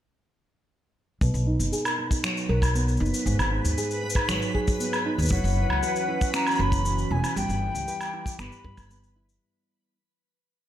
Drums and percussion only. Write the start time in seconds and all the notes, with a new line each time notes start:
1.21 kick, shaker
1.35 shaker
1.60 shaker
1.73 shaker
1.85 low woodblock, shaker
2.11 kick, shaker
2.24 finger snap, shaker
2.37 shaker
2.62 kick, low woodblock, shaker
2.75 shaker
2.88 shaker
2.97 shaker
3.06 shaker
3.14 shaker
3.27 shaker
3.39 low woodblock, shaker
3.65 shaker
3.78 shaker
3.91 shaker
4.10 shaker
4.15 kick, low woodblock
4.29 finger snap, shaker
4.42 shaker
4.55 kick
4.68 kick, shaker
4.80 shaker
4.93 low woodblock, shaker
5.19 shaker
5.22 shaker
5.25 shaker
5.29 kick, shaker
5.45 shaker
5.47 shaker
5.50 shaker
5.70 low woodblock
5.83 shaker
5.96 shaker
6.21 kick, shaker
6.34 finger snap, shaker
6.47 low woodblock, shaker
6.51 shaker
6.55 shaker
6.72 kick, shaker
6.85 shaker
6.98 shaker
7.24 low woodblock, shaker
7.37 shaker
7.50 shaker
7.75 shaker
7.88 shaker
8.01 low woodblock, shaker
8.26 kick, shaker
8.39 finger snap, shaker
8.52 shaker
8.65 kick
8.77 kick, low woodblock, shaker
8.91 shaker
9.04 shaker
9.29 shaker